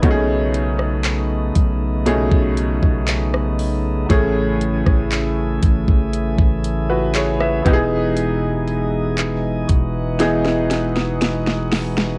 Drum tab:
HH |x-x-x-x-x-x-x-o-|x-x-x-x-x-x-x-x-|x-x-x-x-x-x-x-o-|
CP |----x-------x---|----x-------x---|----x-----------|
SD |---r---------r--|---r---------r--|--------oooooooo|
BD |o-----o--o-o----|o--o--oo-o----o-|------o---------|